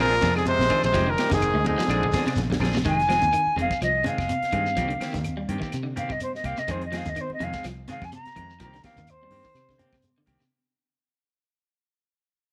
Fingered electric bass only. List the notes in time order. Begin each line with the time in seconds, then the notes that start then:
Already playing: A#1
0.22 F2
0.59 A#1
0.84 A#1
0.94 F1
1.31 F1
1.54 D2
1.79 muted fingered electric bass stroke
1.88 A#1
2.36 A#1
2.60 A#1
2.85 F1
3.23 D#2
3.47 muted fingered electric bass stroke
3.56 F1
3.81 C2
4.18 F1
4.42 muted fingered electric bass stroke
4.53 G2
4.76 C2
5.00 muted fingered electric bass stroke
5.14 D#2
5.49 G2
5.61 muted fingered electric bass stroke
5.74 C3
6.10 G2
6.44 C2
6.68 F2
7.06 D#2
7.31 muted fingered electric bass stroke
7.40 F2
7.65 C2
8.02 F2
8.26 muted fingered electric bass stroke
8.36 F2
8.59 C2
8.96 D#2
9.30 G2
9.55 C3
9.92 G2
10.27 C2